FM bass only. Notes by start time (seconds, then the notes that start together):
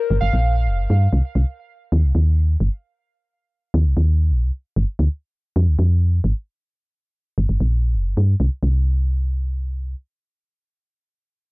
0.11 G1
0.22 G1
0.33 A#1
0.67 F1
0.79 G1
0.90 G2
1.13 C2
1.35 C2
1.92 D#2
2.04 C2
2.15 D#2
2.60 G1
3.74 D#2
3.85 C2
3.97 D#2
4.31 A#1
4.42 C2
4.76 G1
4.99 D2
5.56 F2
5.67 D2
5.79 F2
6.24 G#1
7.38 G1
7.49 G1
7.60 A#1
7.95 F1
8.06 G1
8.17 G2
8.40 C2
8.63 C2